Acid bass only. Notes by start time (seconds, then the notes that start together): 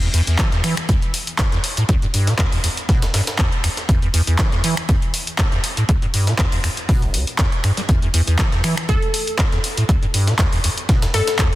0.02 E2
0.14 E2
0.27 E2
0.52 E2
0.64 E3
0.89 E2
1.39 E2
1.52 E2
1.77 A2
1.89 D2
2.03 G2
2.14 G2
2.27 B2
2.39 E2
2.52 E2
2.64 E2
2.89 B2
3.02 E1
3.14 G2
3.39 E2
3.64 E2
3.89 E2
4.02 E2
4.14 E2
4.27 E2
4.39 E3
4.52 E2
4.64 E3
4.89 E2
5.39 E2
5.53 E2
5.77 A2
5.89 D2
6.02 G2
6.14 G2
6.27 B2
6.39 E2
6.53 E2
6.64 E2
6.89 B2
7.02 E1
7.14 D2
7.39 E2
7.64 G2
7.77 G3
7.89 E2
8.02 E2
8.14 E2
8.27 E2
8.39 E3
8.52 E2
8.64 E3
8.89 E2
9.39 E2
9.52 E2
9.78 A2
9.89 D2
10.03 G2
10.14 G2
10.28 B2
10.39 E2
10.53 E2
10.64 E2
10.89 B2
11.03 E1
11.14 G2
11.39 E2